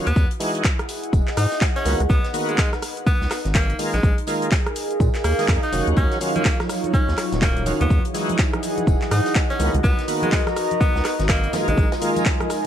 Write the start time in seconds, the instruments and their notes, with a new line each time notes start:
Already playing: ambient pad F#4 F5
0.07 analog synth bass D#2, tenor saxophone B3, closed hi-hat, shaker
0.16 analog synth bass E2, ambient pad E4, kick, tambourine, shaker
0.31 closed hi-hat, shaker
0.39 tonewheel organ E3 G#3 D#4 F#4, ambient pad F#5, snare, open hi-hat, tambourine, shaker
0.45 ambient pad G#4
0.55 closed hi-hat, shaker
0.64 kick, snare, clap, tambourine, shaker
0.76 ambient pad D#5, cross-stick, closed hi-hat, shaker
0.89 open hi-hat, tambourine, shaker
1.04 closed hi-hat, shaker
1.13 analog synth bass E1, kick, tambourine, shaker
1.27 snare, clap, shaker
1.37 analog synth bass G#2, tenor saxophone D#4, cross-stick, open hi-hat, tambourine, shaker
1.52 snare, open hi-hat, shaker
1.61 kick, snare, clap, tambourine, shaker
1.76 tenor saxophone C#4, snare, closed hi-hat, shaker
1.85 analog synth bass C#2, tonewheel organ D#3 A#3 B3 F#4, ambient pad D#4, open hi-hat, tambourine, shaker
2.00 analog synth bass C#2, closed hi-hat, shaker
2.10 analog synth bass C#2, tenor saxophone B3, kick, tambourine, shaker
2.23 ambient pad B4, snare, closed hi-hat, shaker
2.33 tonewheel organ D#3 A#3 B3 F#4, open hi-hat, tambourine, shaker
2.49 tenor saxophone G#3, closed hi-hat, shaker
2.58 kick, snare, clap, tambourine, shaker
2.73 cross-stick, snare, closed hi-hat, shaker
2.82 cross-stick, open hi-hat, tambourine, shaker
2.97 closed hi-hat, shaker
3.06 tenor saxophone B3, kick, tambourine, shaker
3.21 analog synth bass C#2, snare, shaker
3.31 cross-stick, snare, clap, open hi-hat, tambourine, shaker
3.45 analog synth bass G#1, snare, closed hi-hat, shaker
3.55 tenor saxophone A#3, kick, clap, tambourine, shaker
3.70 closed hi-hat, shaker
3.79 tonewheel organ D#3 G#3 A#3 F4, open hi-hat, tambourine, shaker
3.94 analog synth bass A#1, tenor saxophone G#3, snare, closed hi-hat, shaker
4.03 analog synth bass A#1, ambient pad G#4, kick, tambourine, shaker
4.18 ambient pad A#4, closed hi-hat, shaker
4.27 tonewheel organ D#3 G#3 A#3 F4, snare, open hi-hat, tambourine, shaker
4.42 closed hi-hat, shaker
4.51 kick, snare, clap, tambourine, shaker
4.66 ambient pad F5, cross-stick, closed hi-hat, shaker
4.76 open hi-hat, tambourine, shaker
4.91 closed hi-hat, shaker
5.00 analog synth bass A#2, kick, tambourine, shaker
5.15 snare, clap, closed hi-hat, shaker
5.24 analog synth bass D#2, tenor saxophone A#3, cross-stick, open hi-hat, tambourine, shaker
5.38 tonewheel organ D#3 G#3 A#3 G#4, snare, open hi-hat, shaker
5.48 analog synth bass F2, kick, snare, clap, tambourine, shaker
5.63 tenor saxophone D#4, snare, closed hi-hat, shaker
5.72 analog synth bass F1, tonewheel organ D#3 F#3 C#4 F#4, open hi-hat, tambourine, shaker
5.87 analog synth bass D#2, closed hi-hat, shaker
5.97 analog synth bass D#2, analog synth pad F#3 D#4 F4 C#5, tenor saxophone C#4, kick, tambourine, shaker
6.11 ambient pad F#3, snare, closed hi-hat, shaker
6.20 tonewheel organ D#3 F#3 C#4 F4, open hi-hat, tambourine, shaker
6.36 tenor saxophone A#3, ambient pad C#5, closed hi-hat, high conga, shaker
6.45 kick, snare, clap, tambourine, shaker
6.60 cross-stick, snare, closed hi-hat, high conga, shaker
6.69 cross-stick, open hi-hat, tambourine, shaker
6.84 closed hi-hat, high conga, shaker
6.94 tenor saxophone C#4, kick, tambourine, shaker
7.08 analog synth bass D#2, snare, shaker
7.17 cross-stick, snare, clap, open hi-hat, tambourine, shaker
7.32 analog synth bass D#1, snare, closed hi-hat, shaker
7.42 tenor saxophone A#3, kick, snare, clap, tambourine, shaker
7.57 closed hi-hat, shaker
7.66 tonewheel organ D#3 F#3 C#4 F4, open hi-hat, tambourine, muted conga, high conga, shaker
7.81 analog synth bass D#2, tenor saxophone B3, closed hi-hat, muted conga, low conga, shaker
7.90 analog synth bass E2, ambient pad E3, analog synth pad D#4 E4 G#4, kick, tambourine, shaker
8.05 closed hi-hat, shaker
8.14 tonewheel organ E3 G#3 D#4 F#4, ambient pad G#4, snare, open hi-hat, tambourine, shaker
8.18 ambient pad D#5
8.29 ambient pad F#5, closed hi-hat, high conga, shaker
8.38 kick, snare, clap, tambourine, shaker
8.53 cross-stick, closed hi-hat, high conga, shaker
8.63 open hi-hat, tambourine, shaker
8.78 closed hi-hat, high conga, shaker
8.87 analog synth bass E1, kick, tambourine, shaker
9.01 snare, clap, muted conga, shaker
9.11 analog synth bass G#2, tenor saxophone D#4, cross-stick, open hi-hat, tambourine, shaker
9.26 snare, open hi-hat, shaker
9.35 kick, snare, clap, tambourine, shaker
9.50 tenor saxophone C#4, snare, closed hi-hat, shaker
9.59 analog synth bass C#2, tonewheel organ D#3 A#3 B3 F#4, analog synth pad D#4 F#4 A#4 B4, ambient pad F#4, open hi-hat, tambourine, muted conga, shaker
9.74 analog synth bass C#2, closed hi-hat, low conga, shaker
9.84 analog synth bass C#2, tenor saxophone B3, kick, tambourine, shaker
9.94 ambient pad A#5
9.99 snare, closed hi-hat, shaker
10.08 tonewheel organ D#3 A#3 B3 F#4, open hi-hat, tambourine, shaker
10.22 tenor saxophone G#3, closed hi-hat, high conga, shaker
10.32 kick, snare, clap, tambourine, shaker
10.47 cross-stick, snare, closed hi-hat, high conga, shaker
10.56 cross-stick, open hi-hat, tambourine, shaker
10.71 closed hi-hat, high conga, shaker
10.81 tenor saxophone B3, kick, tambourine, shaker
10.95 analog synth bass C#2, snare, shaker
11.04 cross-stick, snare, clap, open hi-hat, tambourine, shaker
11.20 analog synth bass G#1, snare, closed hi-hat, shaker
11.29 tenor saxophone A#3, kick, snare, clap, tambourine, shaker
11.44 closed hi-hat, shaker
11.53 tonewheel organ D#3 G#3 A#3 F4, analog synth pad G#3 F4 A#4, ambient pad F4, snare, open hi-hat, tambourine, muted conga, high conga, shaker
11.68 analog synth bass A#1, tenor saxophone G#3, closed hi-hat, muted conga, low conga, shaker
11.72 ambient pad A#4 G#5
11.78 analog synth bass A#1, kick, tambourine, shaker
11.92 snare, closed hi-hat, tambourine, shaker
12.01 tonewheel organ D#3 G#3 A#3 F4, open hi-hat, shaker
12.16 closed hi-hat, tambourine, high conga, shaker
12.26 kick, snare, clap, tambourine, shaker
12.40 cross-stick, closed hi-hat, high conga, shaker
12.50 cross-stick, open hi-hat, tambourine, shaker